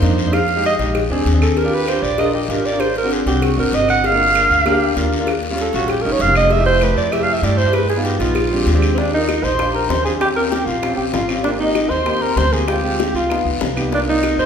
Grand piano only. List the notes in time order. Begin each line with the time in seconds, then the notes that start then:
0.02 A#3 D4 D#4
0.25 A#3 D4 D#4
0.56 G#3 D#4 G4
0.79 G#3 D#4 G4
1.10 C4 D4 G#4
1.33 C4 D4 G#4
1.64 D4 F4 G4
1.87 D4 F4 G4
2.18 D4 F4 A#4
2.48 D4 F4 G4
2.71 D4 F4 A#4
3.03 C4 D4 F#4
3.26 C4 D4 F#4
3.57 C4 D4 F#4
3.80 C4 D4 F#4
4.11 A#3 D4 F4
4.34 A#3 D4 F4
4.66 A#3 D4 G4
4.96 A#3 D4 F4
5.19 A#3 D4 F4
5.50 G3 C#4 F4
5.73 G3 C#4 F4
6.04 G3 C#4 D#4
6.26 G3 C#4 F4
6.58 A3 E4 G4
6.81 A3 E4 G4
7.11 A3 E4 G4
7.43 A3 E4 G4
7.66 A3 E4 G4
7.96 B3 D#4 F4
8.19 B3 D#4 F4
8.50 G#3 C4 D4 G4
8.74 G#3 C4 D4 G4
8.97 D4 F4 G4
9.13 D#4 F4 A#4
9.58 D4 F4 G4
10.04 D4 F4 G4
10.19 C4 C#4 F4 G4
10.35 C4 C#4 F4 A#4
10.82 C4 C#4 F4 G4
11.28 C4 C#4 F4 G4
11.45 A#3 C4 G4
11.60 A#3 C4 G4
12.06 A#3 C4 G4
12.52 A#3 C4 G4
12.67 G#3 C4 F4
12.83 G#3 C4 F4
13.29 B3 D#4 F4
13.76 B3 D#4 G4
13.90 A#3 D4 D#4 F4
14.06 A#3 C4 D#4 F4